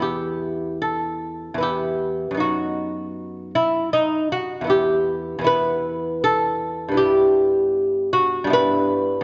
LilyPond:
<<
  \new Staff \with { instrumentName = "Lute" } { \time 3/4 \key e \minor \tempo 4 = 78 g'4 a'4 g'4 | fis'4. e'8 dis'8 fis'8 | g'4 b'4 a'4 | g'4. fis'8 b'4 | }
  \new Staff \with { instrumentName = "Lute" } { \time 3/4 \key e \minor <e, b e'>2 <e, b e'>4 | <fis, b dis'>2. | <e, b e'>4 <e, b e'>2 | <g, b e'>2 <g, b e'>4 | }
>>